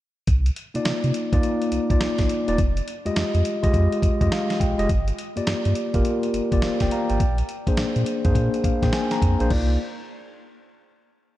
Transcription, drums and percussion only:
0.27 kick, closed hi-hat
0.46 closed hi-hat
0.56 closed hi-hat
0.75 closed hi-hat
0.85 snare, closed hi-hat
1.04 closed hi-hat
1.14 closed hi-hat
1.33 kick, closed hi-hat
1.43 closed hi-hat
1.62 closed hi-hat
1.72 closed hi-hat
1.90 kick, closed hi-hat
2.01 snare, closed hi-hat
2.18 kick, snare, closed hi-hat
2.29 closed hi-hat
2.48 closed hi-hat
2.58 kick, closed hi-hat
2.77 closed hi-hat
2.88 closed hi-hat
3.06 closed hi-hat
3.16 snare, closed hi-hat
3.35 closed hi-hat
3.45 closed hi-hat
3.63 kick, closed hi-hat
3.74 kick, closed hi-hat
3.92 closed hi-hat
4.02 kick, closed hi-hat
4.21 kick, closed hi-hat
4.32 snare, closed hi-hat
4.50 snare, closed hi-hat
4.60 kick, closed hi-hat
4.79 closed hi-hat
4.89 kick, closed hi-hat
5.08 closed hi-hat
5.19 closed hi-hat
5.37 closed hi-hat
5.47 snare, closed hi-hat
5.65 closed hi-hat
5.75 closed hi-hat
5.94 kick, closed hi-hat
6.05 closed hi-hat
6.23 closed hi-hat
6.34 closed hi-hat
6.52 kick, closed hi-hat
6.62 snare, closed hi-hat
6.80 kick, snare, closed hi-hat
6.91 closed hi-hat
7.10 closed hi-hat
7.20 kick, closed hi-hat
7.38 closed hi-hat
7.49 closed hi-hat
7.67 kick, closed hi-hat
7.77 snare, closed hi-hat
7.96 closed hi-hat
8.06 closed hi-hat
8.25 kick, closed hi-hat
8.35 kick, closed hi-hat
8.54 closed hi-hat
8.64 kick, closed hi-hat
8.82 kick, snare, closed hi-hat
8.93 snare, closed hi-hat
9.11 snare, closed hi-hat
9.22 kick, closed hi-hat
9.40 closed hi-hat
9.50 kick, crash

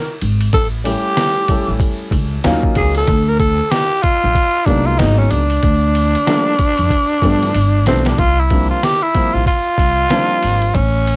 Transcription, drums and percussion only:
0.21 ride
0.40 ride
0.53 kick, ride
0.85 ride
1.17 snare, hi-hat pedal, ride
1.48 kick, ride
1.80 kick, ride
2.11 kick, ride
2.44 snare, hi-hat pedal, ride
2.63 kick
2.75 kick, ride
2.95 ride
3.07 kick, ride
3.40 kick, ride
3.72 snare, hi-hat pedal, ride
4.03 kick, ride
4.35 kick, ride
4.66 kick, ride
4.99 snare, hi-hat pedal, ride
5.31 ride
5.50 ride
5.63 kick, ride
5.95 ride
6.15 ride
6.27 snare, hi-hat pedal, ride
6.59 kick, ride
6.78 ride
6.90 kick, ride
7.22 kick, ride
7.43 snare, ride
7.54 hi-hat pedal, ride
7.86 snare, ride
8.05 snare, ride
8.18 kick, ride
8.50 kick, ride
8.83 snare, hi-hat pedal, ride
9.14 kick, ride
9.46 kick, ride
9.78 kick, ride
10.10 snare, hi-hat pedal, ride
10.43 ride
10.62 ride
10.75 kick, ride
11.07 ride

